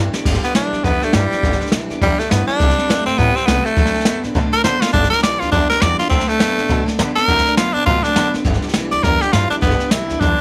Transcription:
Already playing: G2 E3 G3 B3
0.00 D4 G4
0.13 G3 B3 D4 G4, snare
0.25 G1 G2 D3 G3 B3 D4 G4, kick, snare, crash
0.34 snare
0.43 G3 B3 D4 G4, muted upright bass stroke, snare
0.55 B1 G2 E3 G3 B3 D4 G4, snare, hi-hat pedal
0.73 D2 G3 B3 D4 G4, snare
0.84 E2 G2 D3 G3 B3 D4 G4, kick, snare
1.02 G3 A3 B3 D4 G4, muted upright bass stroke, snare
1.13 G2 E3 G3 B3 D4 G4, snare, hi-hat pedal
1.31 G3 B3 D4 G4, muted upright bass stroke, snare
1.43 G1 G2 D3 G3 B3 D4 G4, kick, snare
1.52 snare
1.60 G3 B3 D4 G4, muted upright bass stroke, snare
1.66 snare
1.72 B1 G2 E3 G3 B3 D4 G4, snare, hi-hat pedal
1.90 D2 G3 B3 D4 G4, snare
2.01 E2 G2 D3 G3 B3 D4 G4, kick, snare
2.19 A3 B3 D4 G4, muted upright bass stroke, snare
2.23 G3
2.30 G2 E3 G3 B3 D4 G4, snare, hi-hat pedal
2.47 G3 B3 D4 G4, muted upright bass stroke, snare
2.60 C2 C3 G3 C4 E4 G4, kick, snare
2.69 snare
2.77 C4 E4 G4, snare
2.89 E2 C3 G3 A3 C4 E4 G4, snare, hi-hat pedal
3.05 G2 C4 E4 G4, snare
3.18 A2 C3 G3 B3 C4 E4 G4, kick, snare
3.35 C4 E4 G4, muted upright bass stroke, snare
3.46 C2 C3 G3 A3 B3 C4, snare, hi-hat pedal
3.50 E4 G4
3.65 A3 C4 E4 G4, snare
3.76 D2 D3 F#3 A3 C4 D4 A4, kick, snare
3.85 snare
3.94 C4 D4 A4, muted upright bass stroke, snare
4.00 snare
4.05 F#2 D3 F#3 B3 C4 D4 A4, snare, hi-hat pedal
4.23 A2 C4 D4 A4, snare
4.35 B2 D3 F#3 A3 C4 D4 A4, kick, snare
4.52 C4 D4 A4 A#4, muted upright bass stroke, snare
4.64 D3 F#3 B3 D4 C5, snare, hi-hat pedal
4.81 C4 D4 F4 A4, muted upright bass stroke, snare
4.93 G1 G2 D3 G3 B3 D4 G4, kick, snare
5.03 snare
5.10 B3 D4 G4 A#4, muted upright bass stroke, snare
5.14 G3, snare
5.23 B1 G2 E3 G3 B3 D4 G4 D5, snare, hi-hat pedal
5.40 D2 B3 D4 F4 G4, snare
5.44 G3
5.52 E2 G2 D3 G3 B3 D4 G4, kick, snare
5.69 G3 B3 D4 G4 A#4, muted upright bass stroke, snare
5.81 E2 G2 E3 G3 B3 D4 G4 D5, snare, hi-hat pedal
5.99 G3 B3 D4 F4 G4, muted upright bass stroke, snare
6.10 D2 D3 F#3 A3 C4 D4 A4, kick, snare
6.20 snare
6.28 A3 C4 D4 A4, muted upright bass stroke, snare
6.40 F#2 D3 F#3 B3 C4 D4 A4, snare, hi-hat pedal
6.57 A2 C4 D4 A4, snare
6.68 B2 D3 F#3 A3 C4 D4 A4, kick, snare
6.86 C4 D4 A4, muted upright bass stroke, snare
6.98 D3 F#3 B3 C4 D4 A4, snare, hi-hat pedal
7.16 C4 D4 A4 A#4, muted upright bass stroke, snare
7.27 D2 D3 F#3 A3 C4 D4 A4, kick, snare
7.38 snare
7.46 C4 D4 A4, muted upright bass stroke, snare
7.57 F#2 D3 F#3 B3 C4 D4 F4 A4, snare, hi-hat pedal
7.73 A2 D4 A4, snare
7.78 C4
7.86 B2 D3 F#3 A3 C4 D4 F4 A4, kick, snare
8.03 C4 D4 A4, muted upright bass stroke, snare
8.15 D3 F#3 B3 C4 D4, snare, hi-hat pedal
8.19 A4
8.34 C4 D4 A4, muted upright bass stroke, snare
8.44 G1 G2 D3 G3 B3 D4 G4, kick, snare
8.53 snare
8.62 B3 D4 G4, muted upright bass stroke, snare
8.67 G3, snare
8.74 B1 G2 E3 G3 B3 D4, snare, hi-hat pedal
8.78 G4
8.91 D2 B3 D4 G4 D5, snare
8.95 G3
9.03 E2 G2 D3 G3 B3 D4 G4 A#4, kick, snare
9.21 G3 B3 D4 G4, snare
9.32 G2 E3 G3 B3 D4 F4, snare, hi-hat pedal
9.37 G4
9.50 B3 D4 G4, muted upright bass stroke, snare
9.55 G3
9.62 G1 G2 D3 G3 B3 D4 G4, kick, snare
9.71 snare
9.80 G3 B3 D4 G4, muted upright bass stroke, snare
9.91 B1 G2 E3 G3 B3 D4 E4, snare, hi-hat pedal
9.95 G4
10.09 D2 G3 B3 D4 G4, snare
10.20 E2 G2 D3 G3 B3 D4 G4, kick, snare

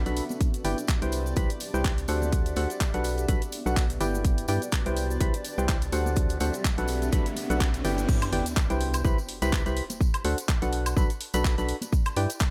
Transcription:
Already playing: B3 F#4 B4 D5
0.06 B1 D4 F#4 A4 B4 B5, closed hi-hat, tambourine, shaker
0.17 open hi-hat, tambourine
0.29 tambourine, high conga, shaker
0.41 G4, kick, closed hi-hat, tambourine, shaker
0.54 closed hi-hat, tambourine, shaker
0.61 G1 E4 G4 B4 D5 G5 A5, open hi-hat, tambourine
0.74 B5, closed hi-hat, tambourine
0.79 shaker
0.87 kick, clap, closed hi-hat, tambourine, shaker
1.02 C2 E4 G4 B4 C5 G5, closed hi-hat, tambourine, shaker
1.12 C4, open hi-hat, tambourine
1.26 tambourine, shaker
1.36 C2 E4 G4 B4 C5 B5, kick, closed hi-hat, tambourine, shaker
1.40 E5
1.50 closed hi-hat, tambourine, shaker
1.60 open hi-hat, tambourine
1.74 C2 E4 G4 B4 C5 G5, tambourine, shaker
1.85 kick, clap, closed hi-hat, tambourine, shaker
1.98 closed hi-hat, tambourine, shaker
2.08 D2 D4 F#4 A4 C5 F#5, open hi-hat, tambourine
2.22 tambourine, high conga, shaker
2.32 D4, kick, closed hi-hat, tambourine, shaker
2.38 A4
2.46 closed hi-hat, tambourine, shaker
2.56 D2 D4 F#4 A4 C5 F#5, open hi-hat, tambourine
2.66 F#5
2.70 closed hi-hat, tambourine, shaker
2.80 kick, clap, closed hi-hat, tambourine, shaker
2.94 B1 D4 F#4 A4 B4 F#5, closed hi-hat, tambourine, shaker
3.04 B3, open hi-hat, tambourine
3.14 F#4
3.18 B4, closed hi-hat, tambourine, shaker
3.28 B1 D4 F#4 A4 B4 B5, kick, closed hi-hat, tambourine, shaker
3.37 D5
3.42 closed hi-hat, tambourine, shaker
3.52 open hi-hat, tambourine
3.66 B1 D4 F#4 A4 B4 F#5, tambourine, shaker
3.77 kick, clap, closed hi-hat, tambourine, shaker
3.90 closed hi-hat, tambourine, shaker
4.00 G1 E4 G4 B4 D5 G5, open hi-hat, tambourine
4.14 tambourine, high conga, shaker
4.25 G4, kick, closed hi-hat, tambourine, riser, shaker
4.38 closed hi-hat, tambourine, shaker
4.48 G2 E4 G4 B4 D5 G5, open hi-hat, tambourine
4.58 A5 B5
4.62 closed hi-hat, tambourine, shaker
4.72 kick, clap, closed hi-hat, tambourine, shaker
4.86 C2 E4 G4 B4 C5 G5, closed hi-hat, tambourine, shaker
4.96 C4, open hi-hat, tambourine
5.10 tambourine, shaker
5.20 C2 E4 G4 B4 C5 B5, kick, closed hi-hat, tambourine, shaker
5.29 E5
5.34 closed hi-hat, tambourine, shaker
5.45 open hi-hat, tambourine
5.58 C2 E4 G4 B4 C5 G5, tambourine, shaker
5.69 kick, clap, closed hi-hat, tambourine, shaker
5.82 closed hi-hat, tambourine, shaker
5.92 D2 D4 F#4 A4 C5 F#5, open hi-hat, tambourine
6.06 tambourine, high conga, shaker
6.16 D4, kick, closed hi-hat, tambourine, shaker
6.29 closed hi-hat, tambourine, shaker
6.40 D2 D4 F#4 A4 C5 F#5, open hi-hat, tambourine
6.50 F#5, tambourine
6.54 closed hi-hat, shaker
6.65 kick, clap, closed hi-hat, shaker
6.78 B1 D4 F#4 A4 B4 F#5, closed hi-hat, tambourine, shaker
6.88 B3, open hi-hat, tambourine
6.97 F#4
7.02 closed hi-hat, tambourine, shaker
7.12 B1 D4 F#4 A4 B4 B5, kick, closed hi-hat, tambourine, shaker
7.26 closed hi-hat, tambourine, shaker
7.35 B4, open hi-hat, tambourine, high conga
7.43 D5
7.50 B1 D4 F#4 A4 B4 F#5, closed hi-hat, tambourine, shaker
7.60 kick, clap, closed hi-hat, tambourine, shaker
7.74 closed hi-hat, tambourine, shaker
7.85 G1 E4 G4 B4 D5 G5, open hi-hat, tambourine
7.98 closed hi-hat, tambourine, high conga, shaker
8.09 kick, crash, tambourine, sub drop, shaker
8.22 closed hi-hat, tambourine, high woodblock, shaker
8.33 G1 E4 G4 B4 D5 G5, open hi-hat
8.46 closed hi-hat, tambourine, shaker
8.56 kick, clap, tambourine, shaker
8.70 C2 E4 G4 B4 C5 G5, closed hi-hat, tambourine, shaker
8.81 open hi-hat
8.94 closed hi-hat, tambourine, high woodblock, shaker
9.04 C2 E4 G4 B4 C5 B5, kick, tambourine, shaker
9.18 tambourine, shaker
9.29 open hi-hat
9.42 C2 E4 G4 B4 C5 B5, closed hi-hat, tambourine, shaker
9.53 kick, clap, tambourine, shaker
9.66 C2 E4 G4 B4 C5 B5, closed hi-hat, tambourine, shaker
9.77 open hi-hat
9.90 closed hi-hat, tambourine, high conga, shaker
10.01 kick, tambourine, shaker
10.14 closed hi-hat, tambourine, high woodblock, shaker
10.24 D2 D4 F#4 A4 C5 F#5, open hi-hat
10.38 closed hi-hat, tambourine, shaker
10.48 kick, clap, tambourine, shaker
10.62 B1 D4 F#4 A4 B4 F#5, closed hi-hat, tambourine, shaker
10.73 open hi-hat
10.86 closed hi-hat, tambourine, high woodblock, shaker
10.96 B1 D4 F#4 A4 B4 B5, kick, tambourine, shaker
11.10 closed hi-hat, tambourine, shaker
11.21 open hi-hat
11.34 B1 D4 F#4 A4 B4 B5, closed hi-hat, tambourine, shaker
11.45 kick, clap, shaker
11.58 B1 D4 F#4 A4 B4 B5, closed hi-hat, tambourine, shaker
11.69 open hi-hat
11.81 closed hi-hat, tambourine, high conga, shaker
11.92 kick, tambourine, shaker
12.05 closed hi-hat, tambourine, high woodblock, shaker
12.16 G2 E4 G4 B4 D5 G5, open hi-hat
12.30 closed hi-hat, tambourine, shaker
12.39 kick, clap, tambourine, shaker

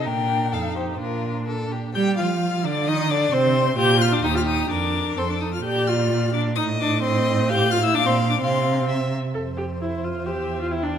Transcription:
0.06 A#2 D4 A#4 G5
0.52 F2 D#4 A4 F5
0.75 G4 C5
0.94 C5
0.99 A#2 D4 F4 A#4
1.48 A4
1.72 G4
1.94 G3 G4 G5 G6
2.17 F3 F4 F5 F6
2.64 D3 D4 D5 D6
2.87 D#3 D#4 D#5 D#6
3.10 D3 D4 D5 D6
3.33 C3 C4 C5 C6
3.78 A#2 F4 G4 G6
4.00 F4 F6
4.12 D4 D6
4.23 D#2 D#4 G4 D#6
4.34 F4 F6
4.46 D#4 D#6
4.70 F2 D4 A#4 D6
5.17 F2 C4 A4 C6
5.30 D4 D6
5.41 D#4 D#6
5.53 F4 F6
5.64 A#2 G4 D5 G6
5.88 F4 F6
6.33 D4 D6
6.56 A2 D#4 D#5 D#6
6.80 D4 D6
7.02 C4 D#5 C6
7.49 G4 F5 G6
7.71 F4 F6
7.83 E4 E6
7.94 A#2 D4 F5 D6
8.06 C4 C6
8.29 D4 D6
8.41 C3 C4 F5 C6
8.88 E5
9.34 F2 A4 C5
9.57 G4
9.81 E4 C5
10.04 F4
10.26 E2 G4 E5
10.61 F4
10.71 E4 G5
10.83 D4

